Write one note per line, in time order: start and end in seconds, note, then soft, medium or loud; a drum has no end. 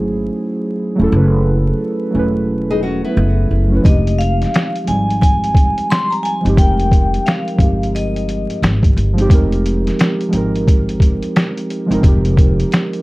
0.00 0.28 G#1 medium
0.00 0.95 F#3 medium
0.00 0.98 A3 medium
0.00 1.00 C#4 medium
0.00 1.02 E4 medium
0.00 3.86 G#4 loud
0.95 1.10 E1 medium
0.95 1.07 F#3 medium
0.95 1.08 A3 medium
1.00 1.09 C#4 medium
1.00 1.10 E4 medium
1.00 1.11 A4 loud
1.08 1.89 F#3 medium
1.08 1.90 A3 medium
1.12 1.71 F#1 loud
1.12 1.91 C#4 medium
1.12 1.92 E4 medium
1.12 1.93 B4 medium
2.11 3.00 E1 medium
2.11 3.15 F#3 medium
2.11 3.16 A3 medium
2.11 3.17 C#4 medium
2.17 3.18 E4 medium
2.17 3.19 B4 medium
2.70 2.82 D#4 medium
2.70 2.82 G#4 medium
2.83 3.03 C#4 medium
2.83 3.03 F#4 medium
3.05 3.82 B3 medium
3.05 3.81 E4 medium
3.17 3.46 F#1 loud
3.51 3.80 F#1 medium
3.68 3.80 F#3 medium
3.68 3.81 A3 medium
3.72 3.82 C#4 medium
3.72 3.83 E4 medium
3.76 3.84 B4 medium
3.81 4.62 F3 medium
3.81 4.63 G#3 medium
3.81 4.64 C4 medium
3.81 4.20 D#5 medium
3.81 kick loud
3.85 4.43 F1 loud
3.85 4.65 D#4 medium
3.85 4.66 G4 medium
3.85 closed hi-hat medium
4.07 closed hi-hat soft
4.18 4.83 F5 medium
4.18 closed hi-hat medium
4.42 snare soft
4.42 closed hi-hat soft
4.54 finger snap medium
4.54 snare loud
4.54 closed hi-hat medium
4.76 closed hi-hat soft
4.84 5.88 F3 medium
4.84 5.89 G#3 medium
4.84 5.90 C4 medium
4.84 5.20 G#5 medium
4.84 closed hi-hat medium
4.88 5.73 G#1 medium
4.88 5.92 G3 medium
4.88 5.91 D#4 medium
5.10 closed hi-hat soft
5.22 5.86 G#5 medium
5.22 kick medium
5.22 closed hi-hat medium
5.44 closed hi-hat soft
5.55 kick medium
5.55 closed hi-hat medium
5.78 closed hi-hat medium
5.90 6.12 C6 loud
5.90 finger snap loud
5.90 snare loud
5.90 closed hi-hat medium
6.11 6.24 A#5 medium
6.11 closed hi-hat soft
6.23 6.39 G#5 loud
6.23 closed hi-hat medium
6.41 6.52 F3 medium
6.41 6.53 G#3 medium
6.45 6.58 G1 medium
6.45 6.54 C4 medium
6.45 6.55 D#4 medium
6.45 6.56 G4 medium
6.45 closed hi-hat medium
6.54 7.16 F1 loud
6.54 7.35 F3 medium
6.54 7.36 G#3 medium
6.54 7.37 C4 medium
6.54 kick loud
6.58 7.38 D#4 medium
6.58 7.39 A#4 medium
6.58 7.28 G5 loud
6.58 closed hi-hat medium
6.80 closed hi-hat medium
6.92 kick loud
6.92 closed hi-hat medium
7.14 closed hi-hat soft
7.26 7.90 F5 medium
7.26 finger snap medium
7.26 snare loud
7.26 closed hi-hat medium
7.48 closed hi-hat soft
7.55 8.44 G1 medium
7.55 8.60 F3 medium
7.55 8.61 G#3 medium
7.55 8.62 C4 medium
7.55 kick medium
7.60 8.63 D#4 medium
7.60 8.64 G4 medium
7.60 closed hi-hat medium
7.83 closed hi-hat soft
7.95 8.59 D#5 medium
7.95 closed hi-hat medium
8.16 closed hi-hat medium
8.29 closed hi-hat medium
8.50 closed hi-hat soft
8.62 8.91 G#1 medium
8.62 finger snap medium
8.62 snare loud
8.62 closed hi-hat medium
8.83 kick loud
8.83 closed hi-hat medium
8.96 9.30 G1 medium
8.96 closed hi-hat medium
9.13 9.25 F3 medium
9.13 9.26 G#3 medium
9.17 9.27 C4 medium
9.17 9.28 D#4 medium
9.17 closed hi-hat medium
9.21 9.29 G4 loud
9.26 9.89 F1 loud
9.26 10.07 F3 medium
9.26 10.08 G#3 medium
9.26 10.09 C4 medium
9.26 kick loud
9.31 10.10 D#4 medium
9.31 10.11 A#4 loud
9.31 closed hi-hat medium
9.52 closed hi-hat medium
9.66 closed hi-hat medium
9.87 snare soft
9.87 closed hi-hat soft
9.99 finger snap medium
9.99 snare loud
9.99 closed hi-hat medium
10.21 closed hi-hat soft
10.28 11.33 F3 medium
10.28 11.34 G#3 medium
10.33 11.18 G#1 medium
10.33 11.35 C4 medium
10.33 11.36 D#4 medium
10.33 closed hi-hat medium
10.37 11.37 A#4 loud
10.56 closed hi-hat soft
10.68 kick medium
10.68 closed hi-hat medium
10.89 closed hi-hat soft
11.00 kick medium
11.00 closed hi-hat medium
11.22 closed hi-hat soft
11.36 finger snap medium
11.36 snare loud
11.36 closed hi-hat medium
11.57 closed hi-hat soft
11.70 closed hi-hat medium
11.86 11.98 F3 medium
11.86 11.99 G#3 medium
11.86 12.00 C4 medium
11.91 12.02 G1 medium
11.91 12.01 D#4 medium
11.91 12.02 A#4 loud
11.91 closed hi-hat medium
11.99 12.80 F3 medium
11.99 12.81 G#3 medium
11.99 kick loud
12.03 12.62 F1 medium
12.03 12.82 C4 medium
12.03 12.83 D#4 medium
12.03 closed hi-hat medium
12.08 12.84 G4 loud
12.25 closed hi-hat medium
12.37 kick loud
12.37 closed hi-hat medium
12.60 closed hi-hat soft
12.72 finger snap medium
12.72 snare loud
12.72 closed hi-hat medium
12.93 closed hi-hat soft